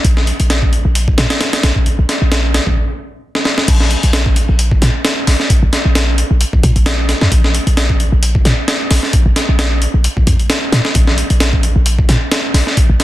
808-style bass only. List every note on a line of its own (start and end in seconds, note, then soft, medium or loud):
0.05 0.32 A#1 loud
0.40 0.78 A#1 medium
0.85 1.12 A#1 medium
1.18 1.26 A#2 medium
1.64 1.72 A#1 medium
1.86 1.96 A#1 soft
1.99 2.05 A#1 medium
2.22 2.60 A#1 medium
2.67 2.77 A#1 medium
3.68 3.96 A#1 loud
4.03 4.42 A#1 medium
4.49 4.76 A#1 medium
4.82 4.90 A#2 medium
5.27 5.35 A#1 medium
5.50 5.60 A#1 soft
5.63 5.69 A#1 medium
5.85 6.23 A#1 medium
6.31 6.44 A#1 medium
6.53 6.60 A#1 medium
6.63 6.71 A#2 medium
6.76 7.14 A#1 medium
7.22 7.28 F2 loud
7.32 7.60 A#1 loud
7.67 8.05 A#1 medium
8.12 8.39 A#1 medium
8.45 8.53 A#2 medium
8.91 8.99 A#1 medium
9.13 9.23 A#1 soft
9.26 9.32 A#1 medium
9.49 9.87 A#1 medium
9.94 10.08 A#1 loud
10.17 10.23 A#1 medium
10.27 10.35 F2 medium
10.72 10.80 A#2 loud
10.95 11.23 A#1 loud
11.30 11.69 A#1 medium
11.76 12.03 A#1 medium
12.09 12.17 A#2 medium
12.54 12.62 A#1 medium
12.77 12.87 A#1 soft
12.89 12.96 A#1 medium